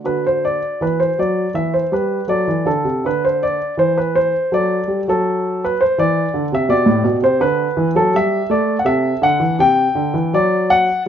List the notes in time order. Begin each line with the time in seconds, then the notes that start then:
0.04 D3 F#4 B4
0.27 C5
0.45 D5
0.81 E3 B4
1.00 C5
1.19 F#3 D5
1.54 E3 E5
1.74 C5
1.92 G3 B4
2.28 F#3 A4 D5
2.48 E3
2.65 D3 A4
2.84 C3
3.05 D3 B4
3.25 C5
3.43 D5
3.77 E3 C5
3.98 B4
4.16 C5
4.52 F#3 A4 D5
4.88 G3
5.08 F#3 A4
5.65 B4
5.81 C5
5.98 E3 D5
6.34 D3
6.52 C3 E5
6.69 B2 G4 D5
6.86 A2
7.04 B2
7.22 C3 C5
7.40 D3 B4
7.77 E3
7.95 F#3 A4
8.14 G3 E5
8.50 A3 D5
8.79 F#5
8.84 C3 A4 E5
9.22 D3 F#5
9.40 E3
9.59 C3 G5
9.95 D3
10.14 E3
10.33 F#3 D5
10.70 F#5